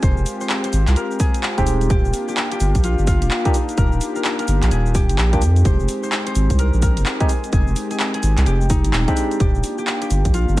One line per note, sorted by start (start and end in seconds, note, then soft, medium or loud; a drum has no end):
0.00 0.16 F1 loud
0.00 1.86 G#3 medium
0.00 1.86 C4 medium
0.00 5.38 F4 medium
0.00 9.36 G4 medium
0.00 1.20 G#4 medium
0.00 0.96 A#4 loud
0.00 0.41 C5 loud
0.00 kick loud
0.00 closed hi-hat medium
0.00 cabasa soft
0.17 0.25 F1 medium
0.17 cabasa soft
0.26 open hi-hat loud
0.26 cabasa medium
0.41 0.64 C5 medium
0.41 cabasa soft
0.49 clap loud
0.49 cabasa soft
0.64 2.62 C5 loud
0.64 cross-stick soft
0.64 closed hi-hat medium
0.64 cabasa soft
0.73 0.86 G#1 medium
0.73 open hi-hat medium
0.73 cabasa medium
0.87 0.96 C2 loud
0.87 clap medium
0.87 closed hi-hat medium
0.87 cabasa soft
0.96 3.09 A#4 medium
0.96 closed hi-hat medium
0.96 cabasa soft
1.11 cabasa soft
1.20 1.64 G#4 loud
1.20 kick loud
1.20 open hi-hat loud
1.20 cabasa medium
1.34 closed hi-hat medium
1.34 cabasa soft
1.43 clap loud
1.43 cabasa soft
1.58 1.89 D#1 loud
1.58 1.89 G#3 medium
1.58 1.89 C4 medium
1.58 1.89 D#4 medium
1.58 1.89 G4 loud
1.58 1.90 G4 medium
1.58 kick medium
1.58 cross-stick soft
1.58 closed hi-hat medium
1.58 cabasa soft
1.67 open hi-hat medium
1.67 cabasa medium
1.81 closed hi-hat soft
1.81 cabasa soft
1.90 2.03 D#1 loud
1.90 5.38 A#3 medium
1.90 5.38 D4 medium
1.90 2.28 G4 loud
1.90 kick loud
1.90 closed hi-hat medium
1.90 cabasa soft
2.05 2.13 D#1 medium
2.05 cabasa soft
2.14 open hi-hat loud
2.14 cabasa medium
2.28 2.51 G4 medium
2.28 cabasa soft
2.37 clap loud
2.37 cabasa soft
2.52 4.77 G4 loud
2.52 cross-stick soft
2.52 closed hi-hat medium
2.52 cabasa soft
2.60 2.74 G1 medium
2.60 open hi-hat medium
2.60 cabasa medium
2.75 2.96 A#1 loud
2.75 kick medium
2.75 closed hi-hat medium
2.75 cabasa soft
2.84 3.07 F4 medium
2.84 closed hi-hat medium
2.84 cabasa soft
2.98 3.23 G1 medium
2.98 cabasa soft
3.07 5.60 F4 loud
3.07 kick loud
3.07 open hi-hat loud
3.07 cabasa medium
3.22 3.30 D#1 medium
3.22 closed hi-hat medium
3.22 cabasa soft
3.31 clap loud
3.31 cabasa soft
3.45 3.55 A#3 medium
3.45 3.55 D4 medium
3.45 6.16 D#4 medium
3.45 3.55 F4 medium
3.45 3.55 G4 loud
3.45 kick loud
3.45 cross-stick soft
3.45 closed hi-hat medium
3.45 cabasa soft
3.54 open hi-hat medium
3.54 cabasa medium
3.69 closed hi-hat soft
3.69 cabasa soft
3.78 3.91 D#1 loud
3.78 4.15 A#4 loud
3.78 kick loud
3.78 closed hi-hat medium
3.78 cabasa soft
3.92 4.00 D#1 medium
3.92 cabasa soft
4.01 open hi-hat loud
4.01 cabasa medium
4.16 4.39 A#4 medium
4.16 cabasa soft
4.24 clap loud
4.24 cabasa soft
4.39 6.51 A#4 medium
4.39 cross-stick soft
4.39 closed hi-hat medium
4.39 cabasa soft
4.48 4.61 G1 medium
4.48 open hi-hat medium
4.48 cabasa medium
4.63 4.71 A#1 loud
4.63 clap medium
4.63 closed hi-hat medium
4.63 cabasa soft
4.71 5.11 D#1 medium
4.71 5.01 G#4 medium
4.71 closed hi-hat medium
4.71 cabasa soft
4.86 cabasa soft
4.95 5.32 G4 loud
4.95 kick loud
4.95 open hi-hat loud
4.95 cabasa medium
5.09 5.17 G1 loud
5.09 closed hi-hat medium
5.09 cabasa soft
5.18 5.43 A#1 loud
5.18 clap loud
5.18 cabasa soft
5.33 5.41 A#3 medium
5.33 5.41 D4 medium
5.33 5.41 F4 medium
5.33 7.27 G4 medium
5.33 5.41 G4 loud
5.33 kick medium
5.33 cross-stick soft
5.33 closed hi-hat medium
5.33 cabasa soft
5.42 5.63 F2 loud
5.42 9.36 G#3 medium
5.42 9.36 C4 medium
5.42 9.36 D#4 medium
5.42 open hi-hat medium
5.42 cabasa medium
5.56 closed hi-hat soft
5.56 cabasa soft
5.65 5.78 F1 loud
5.65 6.03 C5 loud
5.65 kick loud
5.65 closed hi-hat medium
5.65 cabasa soft
5.80 5.88 F1 medium
5.80 cabasa soft
5.89 open hi-hat loud
5.89 cabasa medium
6.03 6.26 C5 medium
6.03 cabasa soft
6.12 clap loud
6.12 cabasa soft
6.27 8.25 C5 loud
6.27 cross-stick soft
6.27 closed hi-hat medium
6.27 cabasa soft
6.35 6.49 G#1 medium
6.35 open hi-hat loud
6.35 cabasa medium
6.50 6.71 C2 loud
6.50 kick medium
6.50 closed hi-hat medium
6.50 cabasa soft
6.59 6.82 A#4 medium
6.59 closed hi-hat medium
6.59 cabasa soft
6.74 6.99 A#1 medium
6.74 cabasa soft
6.82 8.95 A#4 loud
6.82 kick loud
6.82 open hi-hat loud
6.82 cabasa medium
6.97 7.05 F1 medium
6.97 closed hi-hat medium
6.97 cabasa soft
7.06 clap loud
7.06 cabasa soft
7.20 7.30 G#3 medium
7.20 7.30 C4 medium
7.20 7.30 D#4 medium
7.20 7.30 G4 medium
7.20 7.52 G#4 medium
7.20 kick loud
7.20 cross-stick soft
7.20 closed hi-hat medium
7.20 cabasa soft
7.29 open hi-hat loud
7.29 cabasa medium
7.44 closed hi-hat soft
7.44 cabasa soft
7.53 7.66 F1 loud
7.53 7.90 G#4 loud
7.53 kick loud
7.53 closed hi-hat medium
7.53 cabasa soft
7.67 7.75 F1 medium
7.67 cabasa soft
7.76 open hi-hat loud
7.76 cabasa medium
7.91 8.14 G#4 medium
7.91 closed hi-hat soft
7.91 cabasa soft
8.00 clap loud
8.00 cabasa soft
8.14 8.53 G#4 loud
8.14 cross-stick soft
8.14 closed hi-hat medium
8.14 cabasa soft
8.23 8.36 G#1 medium
8.23 open hi-hat loud
8.23 cabasa medium
8.38 8.46 C2 loud
8.38 clap medium
8.38 closed hi-hat medium
8.38 cabasa soft
8.46 8.86 F1 medium
8.46 9.40 G4 medium
8.46 closed hi-hat medium
8.46 cabasa soft
8.61 cabasa soft
8.70 9.14 D#4 loud
8.70 kick loud
8.70 open hi-hat loud
8.70 cabasa medium
8.84 8.92 G#1 loud
8.84 closed hi-hat medium
8.84 cabasa soft
8.93 9.06 D#1 medium
8.93 clap loud
8.93 cabasa soft
9.08 9.39 G#3 medium
9.08 9.39 C4 medium
9.08 10.60 D4 medium
9.08 9.39 D#4 medium
9.08 9.39 G4 loud
9.08 kick medium
9.08 cross-stick soft
9.08 closed hi-hat medium
9.08 cabasa soft
9.17 open hi-hat loud
9.17 cabasa medium
9.31 closed hi-hat soft
9.31 cabasa soft
9.40 9.53 D#1 loud
9.40 10.60 A#3 medium
9.40 10.60 D4 medium
9.40 10.60 F4 medium
9.40 10.60 G4 medium
9.40 9.78 G4 loud
9.40 kick loud
9.40 closed hi-hat medium
9.40 cabasa soft
9.55 9.63 D#1 medium
9.55 cabasa soft
9.64 open hi-hat loud
9.64 cabasa medium
9.78 10.01 G4 medium
9.78 cabasa soft
9.87 clap loud
9.87 cabasa soft
10.02 10.60 G4 medium
10.02 cross-stick soft
10.02 closed hi-hat medium
10.02 cabasa soft
10.11 10.24 G1 medium
10.11 open hi-hat loud
10.11 cabasa medium
10.25 10.46 A#1 loud
10.25 kick medium
10.25 closed hi-hat medium
10.25 cabasa soft
10.34 10.57 F4 medium
10.34 closed hi-hat medium
10.34 cabasa soft
10.49 10.60 G1 medium
10.49 cabasa soft